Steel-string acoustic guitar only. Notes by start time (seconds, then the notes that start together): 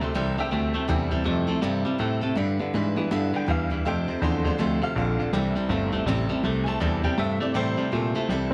0.01 G3 C4 E4 A4
0.14 C3 E3 G3 C4 E4 A4
0.37 G3 C4 E4 A4
0.51 G3 C4 E4 A4
0.73 G3 C4 E4 A4
0.88 C3 E3 G3 C4 E4 A4
1.11 G3 C4 E4 A4
1.24 G3 C4 E4 A4
1.47 G3 C4 E4 A4
1.62 C3 E3 G3 C4 E4 A4
1.85 G3 C4 E4 A4
1.98 G3 C4 E4 A4
2.21 G3 C4 E4 A4
2.35 G3 D4 E4 B4
2.59 D4 E4 B4
2.74 G3 D4 E4 B4
2.96 D4 E4 B4
3.11 G3 D4 E4 B4
3.33 D4 E4 B4
3.46 G3 D4 E4 B4
3.70 D4 E4 B4
3.85 F3 A3 D4 A4 C5
4.08 D4 A4 C5
4.22 A3 D4 A4 C5
4.45 D4 A4 C5
4.58 F3 A3 D4 A4 C5
4.82 D4 A4 C5
4.97 A3 D4 A4 C5
5.19 D4 A4 C5
5.33 C3 E3 G3 C4 E4 A4
5.56 G3 C4 E4 A4
5.69 G3 C4 E4 A4
5.92 G3 C4 E4 A4
6.08 C3 E3 G3 C4 E4 A4
6.29 G3 C4 E4 A4
6.43 G3 C4 E4 A4
6.66 G3 C4 E4 A4
6.80 C3 E3 G3 C4 E4 A4
7.03 G3 C4 E4 A4
7.18 G3 C4 E4 A4
7.41 G3 C4 E4 A4
7.54 C3 E3 G3 C4 E4 A4
7.77 G3 C4 E4 A4
7.92 G3 C4 E4 A4
8.15 G3 C4 E4 A4
8.30 C3 E3 G3 C4 E4 A4